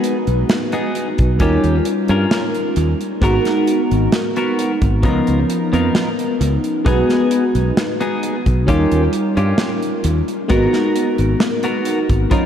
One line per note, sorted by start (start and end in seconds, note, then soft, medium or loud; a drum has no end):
0.00 1.31 G#3 medium
0.00 0.16 B3 loud
0.00 1.31 B3 medium
0.00 0.16 D#4 medium
0.00 1.32 D#4 medium
0.00 1.32 F#4 medium
0.00 0.16 G#4 loud
0.00 1.32 B4 medium
0.00 closed hi-hat medium
0.27 0.43 B1 medium
0.27 closed hi-hat soft
0.49 snare loud
0.49 closed hi-hat medium
0.72 1.07 B3 medium
0.72 1.07 D#4 medium
0.72 1.07 G#4 medium
0.72 closed hi-hat medium
0.95 closed hi-hat medium
1.18 1.40 B1 medium
1.18 kick loud
1.18 closed hi-hat soft
1.39 1.57 D#2 medium
1.39 3.13 G3 medium
1.39 3.13 C#4 medium
1.39 1.75 C#4 medium
1.39 3.13 D#4 medium
1.39 3.14 F4 medium
1.39 1.75 F4 medium
1.39 1.75 G4 medium
1.39 3.14 A#4 medium
1.39 kick loud
1.39 closed hi-hat medium
1.64 1.79 D#2 medium
1.64 closed hi-hat soft
1.85 closed hi-hat medium
2.08 2.25 G2 loud
2.08 2.43 C#4 medium
2.08 2.43 F4 medium
2.08 2.44 A#4 medium
2.08 closed hi-hat soft
2.31 snare loud
2.31 closed hi-hat medium
2.55 closed hi-hat soft
2.76 2.93 D#2 medium
2.76 muted clean electric guitar stroke soft
2.76 closed hi-hat medium
3.01 closed hi-hat soft
3.21 3.38 G#1 loud
3.21 4.95 G#3 medium
3.21 4.95 B3 medium
3.21 3.80 B3 loud
3.21 4.95 D#4 medium
3.21 3.80 F#4 medium
3.21 4.96 F#4 medium
3.21 3.80 A#4 loud
3.21 4.96 A#4 medium
3.21 kick loud
3.21 closed hi-hat medium
3.45 snare soft
3.45 closed hi-hat medium
3.67 closed hi-hat medium
3.91 4.07 G#1 medium
3.91 closed hi-hat soft
4.12 snare loud
4.12 closed hi-hat medium
4.36 4.70 B3 medium
4.36 4.71 F#4 medium
4.36 4.71 A#4 medium
4.36 closed hi-hat soft
4.59 closed hi-hat medium
4.82 5.05 G#1 medium
4.82 kick loud
4.82 closed hi-hat soft
5.02 5.20 C#2 medium
5.02 6.76 F3 medium
5.02 6.77 B3 medium
5.02 5.38 B3 medium
5.02 6.77 C#4 medium
5.02 5.39 D#4 medium
5.02 6.77 D#4 medium
5.02 5.39 F4 medium
5.02 5.39 A#4 medium
5.02 6.78 A#4 medium
5.02 kick loud
5.02 closed hi-hat medium
5.27 5.43 C#2 medium
5.27 closed hi-hat soft
5.50 closed hi-hat medium
5.73 5.88 F2 loud
5.73 6.07 B3 medium
5.73 6.07 D#4 medium
5.73 6.07 F4 medium
5.73 6.07 A#4 medium
5.73 closed hi-hat soft
5.95 snare loud
5.95 closed hi-hat medium
6.19 closed hi-hat medium
6.41 6.57 C#2 loud
6.41 muted clean electric guitar stroke soft
6.41 closed hi-hat medium
6.64 closed hi-hat medium
6.84 7.02 B1 loud
6.84 8.58 G#3 medium
6.84 8.59 B3 medium
6.84 7.43 B3 loud
6.84 8.59 D#4 medium
6.84 7.43 D#4 loud
6.84 8.59 F#4 medium
6.84 7.44 G#4 loud
6.84 8.60 B4 medium
6.84 kick loud
6.84 closed hi-hat medium
7.09 snare soft
7.09 closed hi-hat medium
7.31 closed hi-hat loud
7.55 7.70 B1 medium
7.55 closed hi-hat medium
7.77 snare loud
7.77 closed hi-hat medium
8.00 8.34 B3 medium
8.00 8.34 D#4 medium
8.00 8.35 G#4 loud
8.00 closed hi-hat soft
8.23 closed hi-hat medium
8.46 8.68 B1 medium
8.46 kick medium
8.46 closed hi-hat soft
8.66 8.84 D#2 medium
8.66 10.40 G3 medium
8.66 10.40 C#4 medium
8.66 9.02 C#4 medium
8.66 10.41 D#4 medium
8.66 10.41 F4 medium
8.66 9.03 F4 medium
8.66 9.03 G4 medium
8.66 10.42 A#4 medium
8.66 kick loud
8.66 closed hi-hat medium
8.92 9.07 D#2 medium
8.92 closed hi-hat medium
9.13 closed hi-hat medium
9.37 9.52 G2 loud
9.37 9.71 C#4 medium
9.37 9.71 F4 medium
9.37 9.71 G4 medium
9.37 closed hi-hat soft
9.58 snare loud
9.58 closed hi-hat medium
9.82 closed hi-hat medium
10.04 10.21 D#2 medium
10.04 muted clean electric guitar stroke soft
10.04 closed hi-hat loud
10.28 closed hi-hat medium
10.48 10.66 G#1 medium
10.48 12.22 G#3 medium
10.48 12.22 B3 medium
10.48 11.07 B3 loud
10.48 12.23 D#4 medium
10.48 11.07 F#4 loud
10.48 12.23 F#4 medium
10.48 11.07 A#4 loud
10.48 12.24 A#4 medium
10.48 kick loud
10.48 closed hi-hat medium
10.73 snare soft
10.73 closed hi-hat medium
10.96 closed hi-hat loud
11.18 11.34 G#1 medium
11.18 closed hi-hat medium
11.40 snare loud
11.40 closed hi-hat medium
11.63 11.98 B3 medium
11.63 11.98 F#4 medium
11.63 11.98 A#4 medium
11.63 closed hi-hat medium
11.85 closed hi-hat loud
12.09 12.25 G#1 medium
12.09 kick medium
12.09 closed hi-hat medium
12.30 12.46 F3 medium
12.30 12.46 B3 medium
12.30 12.46 C#4 medium
12.30 12.46 D#4 medium
12.30 12.46 F4 medium
12.30 12.46 A#4 medium
12.30 kick loud
12.30 closed hi-hat medium